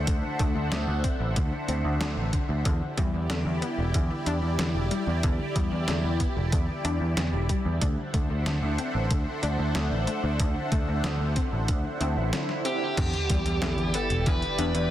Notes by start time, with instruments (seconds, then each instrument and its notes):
Already playing: analog synth pad D4 A4 C5 E5 F#5
0.07 picked electric bass D2, synth arpeggio sound D3, kick, closed hi-hat
0.39 picked electric bass D2, synth arpeggio sound A3, kick, closed hi-hat
0.55 picked electric bass D2
0.71 picked electric bass D2, synth arpeggio sound D3, snare, closed hi-hat
0.88 picked electric bass D2
1.04 synth arpeggio sound C4, kick, closed hi-hat
1.20 picked electric bass A1
1.36 picked electric bass D2, synth arpeggio sound D3, kick, closed hi-hat
1.68 picked electric bass D2, synth arpeggio sound C4, closed hi-hat
1.84 picked electric bass D2
2.00 picked electric bass D2, synth arpeggio sound D3, snare, closed hi-hat
2.17 picked electric bass A1
2.33 synth arpeggio sound D3, kick, closed hi-hat
2.49 picked electric bass D2
2.65 picked electric bass E2, synth arpeggio sound D3, analog synth pad E4 G4 D5, kick, closed hi-hat
2.97 picked electric bass E2, synth arpeggio sound G3, kick, closed hi-hat
3.13 picked electric bass E2
3.30 picked electric bass E2, synth arpeggio sound D3, snare, closed hi-hat
3.46 picked electric bass E2
3.62 synth arpeggio sound B3, closed hi-hat
3.78 picked electric bass E1
3.94 picked electric bass E2, synth arpeggio sound D3, kick, closed hi-hat
4.26 picked electric bass E2, synth arpeggio sound D4, closed hi-hat
4.42 picked electric bass E2
4.59 picked electric bass E2, synth arpeggio sound D3, snare, closed hi-hat
4.75 picked electric bass E1
4.91 synth arpeggio sound G3, closed hi-hat
5.07 picked electric bass E2
5.23 picked electric bass E2, synth arpeggio sound D3, kick, closed hi-hat
5.56 picked electric bass E2, synth arpeggio sound G3, kick, closed hi-hat
5.72 picked electric bass E2
5.88 picked electric bass E2, synth arpeggio sound D3, snare, closed hi-hat
6.04 picked electric bass E2
6.20 synth arpeggio sound B3, kick, closed hi-hat
6.37 picked electric bass E1
6.52 picked electric bass E2, synth arpeggio sound D3, kick, closed hi-hat
6.85 picked electric bass E2, synth arpeggio sound D4, closed hi-hat
7.01 picked electric bass E2
7.17 picked electric bass E2, synth arpeggio sound D3, snare, closed hi-hat
7.33 picked electric bass E1
7.49 synth arpeggio sound G3, kick, closed hi-hat
7.65 picked electric bass E2
7.81 picked electric bass D2, synth arpeggio sound D3, analog synth pad D4 A4 C5 E5 F#5, kick, closed hi-hat
8.14 picked electric bass D2, synth arpeggio sound A3, kick, closed hi-hat
8.30 picked electric bass D2
8.46 synth arpeggio sound D3, snare, closed hi-hat
8.62 picked electric bass D2
8.78 synth arpeggio sound C4, closed hi-hat
8.95 picked electric bass A1
9.11 picked electric bass D2, synth arpeggio sound D3, kick, closed hi-hat
9.43 picked electric bass D2, synth arpeggio sound D4, closed hi-hat
9.59 picked electric bass D2
9.75 picked electric bass D2, synth arpeggio sound D3, snare, closed hi-hat
9.91 picked electric bass A1
10.07 synth arpeggio sound A3, closed hi-hat
10.24 picked electric bass D2
10.40 picked electric bass D2, synth arpeggio sound D3, kick, closed hi-hat
10.72 picked electric bass D2, synth arpeggio sound A3, kick, closed hi-hat
10.88 picked electric bass D2
11.04 picked electric bass D2, synth arpeggio sound D3, snare, closed hi-hat
11.20 picked electric bass D2
11.36 synth arpeggio sound C4, kick, closed hi-hat
11.53 picked electric bass A1
11.68 picked electric bass D2, synth arpeggio sound D3, kick, closed hi-hat, swell
12.01 picked electric bass D2, synth arpeggio sound C4, closed hi-hat
12.17 picked electric bass A1
12.33 synth arpeggio sound D3, snare, closed hi-hat
12.49 snare
12.65 synth arpeggio sound C4, lead electric guitar G4, closed hi-hat
12.97 picked electric bass E2, synth arpeggio sound D3, analog synth pad E4 G4 D5, kick, closed hi-hat, crash, sub drop
13.13 closed hi-hat
13.30 picked electric bass E2, synth arpeggio sound G3, kick, closed hi-hat
13.46 picked electric bass E2, closed hi-hat
13.62 picked electric bass E2, synth arpeggio sound D3, snare, closed hi-hat
13.78 picked electric bass E2, closed hi-hat
13.94 synth arpeggio sound B3, lead electric guitar A4, closed hi-hat
14.10 picked electric bass E1, closed hi-hat
14.26 picked electric bass E2, synth arpeggio sound D3, lead electric guitar B4, kick, closed hi-hat
14.42 closed hi-hat
14.59 picked electric bass E2, synth arpeggio sound D4, closed hi-hat
14.74 picked electric bass E2, closed hi-hat